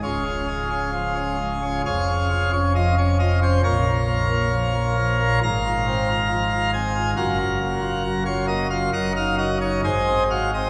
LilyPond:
<<
  \new Staff \with { instrumentName = "Pipe organ" } { \time 4/4 \key des \major \tempo 4 = 67 << { <des' f' aes'>2 <aes' des'' f''>8. des''16 ees''16 des''16 ees''16 c''16 | <f' bes' des''>2 <f'' bes''>4. aes''8 | <f' ges' bes'>4~ <f' ges' bes'>16 des''16 ees''16 f''16 <bes' ees'' ges''>16 f''16 ees''16 des''16 <aes' c'' ees''>8 f''16 ees''16 | } \\ { des,16 des'16 aes16 des'16 f16 des'16 aes16 des'16 f,16 des'16 f'16 des'16 f16 des'16 f'16 des'16 | bes,16 bes16 f16 bes16 f16 bes16 f16 bes16 aes,16 f'16 c'16 f'16 f16 f'16 c'16 f'16 | ges,16 f'16 bes16 f'16 ges16 f'16 bes16 f'16 ges,16 ees'16 ges'16 ees'16 aes,16 c'16 ges'16 c'16 | } >> }
  \new Staff \with { instrumentName = "Pipe organ" } { \clef bass \time 4/4 \key des \major des,,2 f,,2 | bes,,2 aes,,2 | ges,,2 ges,,4 aes,,4 | }
>>